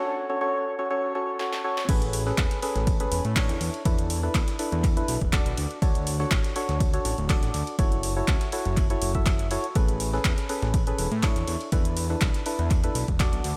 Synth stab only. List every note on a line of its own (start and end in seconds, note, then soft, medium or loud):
0.00 0.26 C#4 medium
0.00 0.26 F#4 medium
0.00 0.26 A4 medium
0.00 0.26 C#5 loud
0.30 0.39 C#4 medium
0.30 0.39 F#4 medium
0.30 0.39 A4 medium
0.30 0.39 C#5 medium
0.41 0.76 C#4 medium
0.41 0.76 F#4 medium
0.41 0.76 A4 medium
0.41 0.76 C#5 loud
0.79 0.88 C#4 medium
0.79 0.88 F#4 medium
0.79 0.88 A4 medium
0.79 0.89 C#5 medium
0.90 1.13 C#4 medium
0.90 1.13 F#4 medium
0.90 1.13 A4 medium
0.90 1.13 C#5 loud
1.15 1.38 C#4 medium
1.15 1.38 F#4 medium
1.15 1.38 A4 medium
1.15 1.38 C#5 loud
1.40 1.62 C#4 medium
1.40 1.62 F#4 medium
1.40 1.62 A4 medium
1.40 1.62 C#5 loud
1.64 1.87 C#4 medium
1.64 1.87 F#4 medium
1.64 1.87 A4 medium
1.64 1.87 C#5 loud
1.89 2.23 C#4 medium
1.89 2.23 G#4 medium
1.89 2.23 A4 medium
1.89 2.23 B4 loud
2.27 2.60 C#4 medium
2.27 2.60 G#4 medium
2.27 2.60 A4 medium
2.27 2.60 B4 medium
2.63 2.97 C#4 medium
2.63 2.97 G#4 medium
2.63 2.97 A4 medium
2.63 2.97 B4 medium
3.00 3.23 C#4 medium
3.00 3.23 G#4 medium
3.00 3.23 A4 medium
3.00 3.23 B4 loud
3.36 3.83 D4 medium
3.36 3.83 E4 medium
3.36 3.83 A4 medium
3.36 3.83 C#5 loud
3.85 4.20 D4 medium
3.85 4.20 E4 medium
3.85 4.20 A4 medium
3.85 4.20 B4 loud
4.23 4.56 D4 medium
4.23 4.56 E4 medium
4.23 4.57 A4 medium
4.23 4.56 B4 medium
4.59 4.94 D4 medium
4.59 4.94 E4 medium
4.59 4.94 A4 medium
4.59 4.94 B4 medium
4.97 5.20 D4 medium
4.97 5.20 E4 medium
4.97 5.20 A4 medium
4.97 5.20 B4 loud
5.33 5.79 D4 medium
5.33 5.79 F#4 medium
5.33 5.79 A4 medium
5.33 5.79 D5 loud
5.82 6.17 D4 medium
5.82 6.17 F#4 medium
5.82 6.17 A4 medium
5.82 6.17 C#5 loud
6.20 6.53 D4 medium
6.20 6.53 F#4 medium
6.20 6.53 A4 medium
6.20 6.53 C#5 medium
6.56 6.90 D4 medium
6.56 6.90 F#4 medium
6.56 6.90 A4 medium
6.56 6.90 C#5 loud
6.94 7.17 D4 medium
6.94 7.17 F#4 medium
6.94 7.17 A4 medium
6.94 7.17 C#5 loud
7.30 7.76 D4 medium
7.30 7.76 F#4 medium
7.30 7.76 A4 medium
7.30 7.76 D5 loud
7.79 8.13 E4 medium
7.79 8.13 F#4 medium
7.79 8.13 A4 medium
7.79 8.13 C#5 loud
8.16 8.50 E4 medium
8.16 8.50 F#4 medium
8.16 8.50 A4 medium
8.16 8.50 C#5 medium
8.53 8.87 E4 medium
8.53 8.87 F#4 medium
8.53 8.87 A4 medium
8.53 8.87 C#5 medium
8.90 9.12 E4 medium
8.90 9.12 F#4 medium
8.90 9.12 A4 medium
8.90 9.12 C#5 loud
9.15 9.48 E4 medium
9.15 9.48 F#4 medium
9.15 9.48 A4 medium
9.15 9.48 E5 medium
9.51 9.66 E4 medium
9.51 9.66 F#4 medium
9.51 9.66 A4 medium
9.51 9.66 C#5 medium
9.76 10.10 C#4 medium
9.76 10.10 G#4 medium
9.76 10.10 A4 medium
9.76 10.10 B4 loud
10.13 10.47 C#4 medium
10.13 10.47 G#4 medium
10.13 10.47 A4 medium
10.13 10.47 B4 medium
10.49 10.84 C#4 medium
10.49 10.84 G#4 medium
10.49 10.84 A4 medium
10.49 10.84 B4 medium
10.87 11.10 C#4 medium
10.87 11.10 G#4 medium
10.87 11.10 A4 medium
10.87 11.10 B4 loud
11.23 11.70 D4 medium
11.23 11.70 E4 medium
11.23 11.70 A4 medium
11.23 11.70 C#5 loud
11.72 12.07 D4 medium
11.72 12.07 E4 medium
11.72 12.07 A4 medium
11.72 12.07 B4 loud
12.10 12.43 D4 medium
12.10 12.43 E4 medium
12.10 12.43 A4 medium
12.10 12.43 B4 medium
12.46 12.81 D4 medium
12.46 12.81 E4 medium
12.46 12.81 A4 medium
12.46 12.81 B4 loud
12.84 13.07 D4 medium
12.84 13.07 E4 medium
12.84 13.07 A4 medium
12.84 13.07 B4 loud
13.20 13.57 D4 medium
13.20 13.57 F#4 medium
13.20 13.57 A4 medium
13.20 13.57 D5 loud